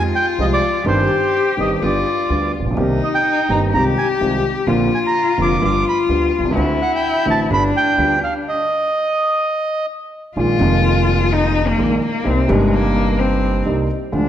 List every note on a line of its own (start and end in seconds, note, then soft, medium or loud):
0.00 0.11 F2 soft
0.00 0.12 F2 soft
0.00 0.12 F3 soft
0.00 0.12 G#3 soft
0.00 0.11 C4 soft
0.00 0.86 F4 medium
0.00 0.12 G4 soft
0.16 0.26 G5 medium
0.38 0.58 C2 soft
0.38 0.59 C2 soft
0.38 0.59 C3 soft
0.38 0.59 F3 soft
0.38 0.59 G#3 soft
0.38 0.59 C4 soft
0.38 0.59 G4 soft
0.38 0.46 D#5 medium
0.53 0.85 D5 medium
0.85 1.05 G1 medium
0.85 1.06 G1 medium
0.85 1.06 G2 medium
0.85 1.06 D#3 medium
0.85 1.06 G3 soft
0.85 1.06 C4 soft
0.85 1.06 G4 medium
0.85 1.83 G4 medium
0.85 1.54 C5 medium
1.57 1.78 G1 soft
1.57 1.78 G2 soft
1.57 1.78 D#3 soft
1.57 1.78 G3 soft
1.57 1.78 C4 soft
1.57 1.78 G4 soft
1.57 1.71 D#5 soft
1.81 2.02 G1 soft
1.81 2.02 G2 soft
1.81 2.03 D3 soft
1.81 2.02 G3 soft
1.81 2.02 B3 soft
1.81 2.54 F4 medium
1.81 2.03 G4 soft
1.86 2.52 D5 medium
2.30 2.50 D2 soft
2.30 2.50 D3 soft
2.30 2.50 G3 soft
2.30 2.50 B3 soft
2.30 2.50 G4 soft
2.60 2.64 A1 soft
2.60 2.66 A1 soft
2.65 2.70 A#1 soft
2.65 2.72 A#1 soft
2.71 2.77 B1 soft
2.71 2.76 B1 soft
2.77 2.97 C2 medium
2.77 2.97 C3 medium
2.77 2.97 D#3 soft
2.77 2.97 A#3 soft
2.77 2.97 C4 soft
2.77 3.69 D#4 medium
2.77 2.97 G4 medium
3.04 3.09 D#5 medium
3.15 3.51 G5 medium
3.49 3.69 G1 soft
3.49 3.70 G2 soft
3.49 3.69 D#3 soft
3.49 3.69 A#3 soft
3.49 3.69 C4 soft
3.49 3.70 G4 soft
3.49 3.61 A#5 medium
3.72 3.93 C2 soft
3.72 3.94 C3 soft
3.72 3.93 D#3 soft
3.72 3.94 G#3 soft
3.72 3.94 C4 soft
3.72 3.94 F4 soft
3.72 4.68 G4 medium
3.72 3.85 A#5 medium
3.98 4.08 G#5 medium
4.20 4.40 C2 soft
4.20 4.41 C3 soft
4.20 4.40 D#3 soft
4.20 4.40 G#3 soft
4.20 4.41 C4 soft
4.20 4.41 F4 soft
4.67 4.87 A#1 medium
4.67 4.88 A#1 medium
4.67 4.87 A#2 medium
4.67 4.87 D3 soft
4.67 4.87 A#3 soft
4.67 4.87 C4 soft
4.67 5.61 F4 medium
4.67 4.88 F4 medium
4.95 4.99 G#5 medium
5.07 5.41 A#5 medium
5.38 5.58 F1 soft
5.38 5.58 F2 soft
5.38 5.58 D3 soft
5.38 5.58 A#3 soft
5.38 5.58 C4 soft
5.38 5.58 F4 soft
5.42 5.63 D6 medium
5.61 5.82 G1 soft
5.61 5.82 G2 soft
5.61 5.81 D3 soft
5.61 5.81 G3 soft
5.61 5.82 B3 soft
5.61 5.82 F4 soft
5.61 6.52 F4 medium
5.61 5.85 D6 medium
5.89 5.99 B5 medium
6.09 6.29 D2 soft
6.09 6.29 D3 soft
6.09 6.29 G3 soft
6.09 6.29 B3 soft
6.09 6.29 F4 soft
6.38 6.44 B1 soft
6.38 6.43 B1 soft
6.44 6.50 C2 soft
6.50 6.56 C#2 medium
6.55 6.76 D2 medium
6.55 6.76 D3 medium
6.55 6.76 A3 medium
6.55 6.76 C4 soft
6.55 7.52 E4 medium
6.55 6.76 F#4 medium
6.82 6.92 F#5 medium
6.96 7.26 G5 medium
7.25 7.46 A1 soft
7.25 7.47 A1 soft
7.25 7.46 A2 soft
7.25 7.46 D3 soft
7.25 7.46 A3 soft
7.25 7.46 C4 soft
7.25 7.46 F#4 soft
7.31 7.40 A5 medium
7.50 7.70 G1 medium
7.50 7.70 G1 soft
7.50 7.70 G2 soft
7.50 7.70 D3 soft
7.50 7.70 G3 soft
7.50 7.70 B3 soft
7.50 8.45 D4 medium
7.50 7.70 F4 soft
7.50 7.63 B5 medium
7.77 8.19 G5 medium
7.98 8.18 D2 soft
7.98 8.18 D3 soft
7.98 8.18 G3 soft
7.98 8.18 B3 soft
7.98 8.18 F4 soft
8.24 8.34 F5 medium
8.48 9.86 D#5 medium
10.36 10.56 A#1 soft
10.36 10.57 A#1 soft
10.36 10.57 A#2 soft
10.36 10.56 D#3 soft
10.36 10.57 G#3 soft
10.36 10.57 A#3 soft
10.36 11.34 F4 medium
10.36 10.57 F4 soft
10.59 11.72 F1 medium
10.59 11.73 F1 medium
10.59 11.73 F2 medium
10.59 11.72 D#3 medium
10.59 11.73 G#3 soft
10.59 11.73 A#3 medium
10.63 11.74 F4 medium
11.32 11.69 D#4 medium
11.67 12.02 A#3 medium
11.78 11.98 A#1 soft
11.78 11.98 A#1 medium
11.78 11.98 A#2 soft
11.78 11.98 D#3 soft
11.78 11.98 G#3 soft
11.78 11.98 A#3 soft
11.78 11.98 F4 soft
12.02 12.28 A#3 medium
12.24 12.45 C2 soft
12.24 12.45 C2 medium
12.24 12.45 C3 soft
12.24 12.45 G3 soft
12.24 12.45 A#3 soft
12.24 12.52 C4 medium
12.24 12.45 D#4 soft
12.47 13.60 G1 medium
12.47 13.60 G2 medium
12.47 13.59 C3 medium
12.47 13.60 G3 medium
12.47 12.75 G#3 medium
12.47 13.61 A#3 medium
12.47 13.61 D#4 medium
12.73 13.21 A#3 medium
13.20 13.66 C4 medium
13.65 13.86 C2 soft
13.65 13.86 C2 medium
13.65 13.86 C3 soft
13.65 13.86 G3 soft
13.65 13.86 A#3 soft
13.65 13.86 D#4 soft
14.12 14.29 D2 soft
14.12 14.29 D2 medium
14.12 14.29 D3 soft
14.12 14.29 F3 soft
14.12 14.29 G#3 soft
14.12 14.29 F4 soft
14.17 14.29 D4 medium